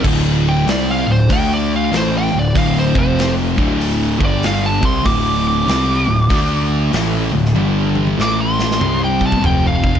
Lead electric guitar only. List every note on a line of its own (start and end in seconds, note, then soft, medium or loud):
0.49 0.68 G5 loud
0.69 0.88 D5 loud
0.91 1.10 F5 medium
1.12 1.31 C5 loud
1.32 1.51 G5 loud
1.53 1.72 D5 medium
1.76 1.94 F5 loud
1.97 2.15 C5 loud
2.18 2.36 G5 loud
2.39 2.57 D5 loud
2.58 2.77 F5 loud
2.79 2.98 C5 loud
2.99 3.31 C5 loud
4.25 4.43 D5 loud
4.46 4.65 F5 loud
4.66 4.85 A5 loud
4.85 5.05 C6 loud
5.06 5.46 D6 loud
5.47 7.31 D6 loud
8.22 8.40 D6 loud
8.41 9.01 C6 loud
9.04 9.23 G5 loud
9.26 9.45 A5 medium
9.46 9.65 G5 medium
9.67 9.99 F5 loud